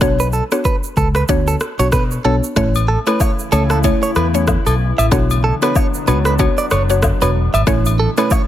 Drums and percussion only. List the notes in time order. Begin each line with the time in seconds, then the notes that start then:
0.01 kick, cross-stick, shaker
0.20 shaker
0.33 shaker
0.52 cross-stick, shaker
0.65 kick, shaker
0.84 shaker
0.97 kick, shaker
1.15 cross-stick, shaker
1.28 kick, shaker
1.47 shaker
1.60 cross-stick, shaker
1.79 shaker
1.92 kick, cross-stick, shaker
2.11 shaker
2.44 shaker
2.56 kick, cross-stick, shaker
2.75 high agogo, shaker
3.07 cross-stick, high agogo, shaker
3.20 kick, low woodblock, shaker
3.39 shaker
3.52 high agogo, shaker
3.70 cross-stick, shaker
3.84 kick, high agogo, shaker
4.03 shaker
4.16 cross-stick, high agogo, shaker
4.35 shaker
4.48 kick, cross-stick, low woodblock, shaker
4.66 high agogo, shaker
4.99 high agogo, shaker
5.12 kick, cross-stick, shaker
5.30 high agogo, shaker
5.62 cross-stick, high agogo, shaker
5.75 kick, low woodblock, shaker
5.94 shaker
6.07 high agogo, shaker
6.25 cross-stick, shaker
6.39 kick, high agogo, shaker
6.58 shaker
6.71 cross-stick, high agogo, shaker
6.90 shaker
7.03 kick, cross-stick, low woodblock, shaker
7.22 high agogo, shaker
7.54 high agogo, shaker
7.67 kick, cross-stick, shaker
7.86 high agogo, shaker
8.17 cross-stick, high agogo, shaker
8.31 kick, low woodblock, shaker